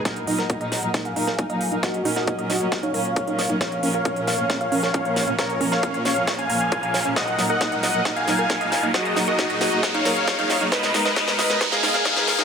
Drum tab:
HH |xxoxxxoxxxoxxxox|xxoxxxoxxxoxxxox|xxoxxxoxxxoxxxox|xxoxxxoxxxoxxxox|
SD |o--o--o-o--o----|o--o--o-o-----o-|o-----o-o--o--o-|o--o--o-o-----o-|
BD |o---o---o---o---|o---o---o---o---|o---o---o---o---|o---o---o---o---|

HH |xxoxxxoxxxoxxxox|xxoxxxoxxxoxxxox|xxoxxxoxxxoxxxox|
SD |o-o-o-o-o-o-o-o-|o-o-o-o-o-o-o-o-|oooooooooooooooo|
BD |o---o---o---o---|o---o---o---o---|o---o---o---o---|